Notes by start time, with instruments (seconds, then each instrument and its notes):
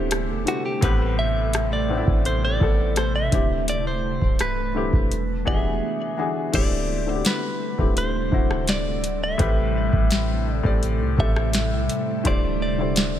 Already playing: 808-style bass D1, ambient pad C3 G3 A3 D4 A4, grand piano D3 A3 C4 E4 G4 G#4 A4, nylon-string guitar B3 G4
0.11 cross-stick, closed hi-hat
0.28 808-style bass E1
0.45 grand piano D3 A3 C4 E4 G4, clean electric guitar F#4, closed hi-hat
0.66 clean electric guitar G4
0.81 808-style bass A1, grand piano A2 A3 B3 C4 G4, ambient pad C3 A3 E4 B4, clean electric guitar B4, kick, closed hi-hat
1.19 clean electric guitar E5
1.53 cross-stick, closed hi-hat
1.73 clean electric guitar D5
1.88 grand piano A2 A3 B3 C4 D4
1.98 grand piano E4
2.07 808-style bass A1, kick
2.25 clean electric guitar C5, closed hi-hat
2.45 clean electric guitar D5
2.60 808-style bass A1, grand piano A2 A3 B3 C4 A4, kick
2.96 clean electric guitar C5, cross-stick, closed hi-hat
3.15 clean electric guitar E5
3.31 808-style bass D1, grand piano D3 A3 C4 E4 G4, ambient pad G3 A3 D4, kick, closed hi-hat
3.68 clean electric guitar D5, closed hi-hat
3.87 clean electric guitar C5
4.22 808-style bass C1, kick
4.39 clean electric guitar B4, cross-stick, closed hi-hat
4.74 grand piano D3 A3 C4 E4 G4
4.93 808-style bass E1, kick
5.11 ambient pad D3 G#3 B3 E4 F#4, closed hi-hat
5.45 808-style bass E1, grand piano E3 B3 D4 F#4 G4, clean electric guitar E5, kick
5.54 grand piano G#4
6.17 grand piano E3 B3 D4 F#4 G#4
6.52 808-style bass D1, ambient pad C3 G3 A3 D4 A4, grand piano D3 A3 C4 E4 G4, clean electric guitar D5, kick, closed hi-hat, crash
7.06 grand piano D3 A3 C4 E4 F#4
7.15 grand piano G4
7.25 clean electric guitar B4, snare, closed hi-hat
7.78 808-style bass D1, grand piano D3 A3 C4 E4 G4, kick
7.97 clean electric guitar C5, closed hi-hat
8.31 808-style bass D1, grand piano D3 A3 C4 E4 F#4, kick
8.51 cross-stick
8.68 clean electric guitar D5, snare, closed hi-hat
9.04 closed hi-hat
9.24 clean electric guitar E5
9.38 808-style bass A1, grand piano A2 A3 C4 G4 B4, ambient pad A3 E4, kick, closed hi-hat
9.93 808-style bass A1, kick
10.11 snare, closed hi-hat
10.55 clean electric guitar D5
10.63 808-style bass A1, grand piano A2 A3 C4 G4 D5, kick
10.83 closed hi-hat
11.00 808-style bass C2
11.17 808-style bass A1, grand piano A2 A3 C4 G4 A4, clean electric guitar E5, kick
11.36 cross-stick
11.53 snare, closed hi-hat
11.72 808-style bass B1
11.89 closed hi-hat
12.24 808-style bass D1, grand piano D3 A3 E4 G4 C5, ambient pad D4, clean electric guitar D5, kick, closed hi-hat
12.62 clean electric guitar D5
12.78 grand piano D3 A3 E4 G4 C5
12.96 snare, closed hi-hat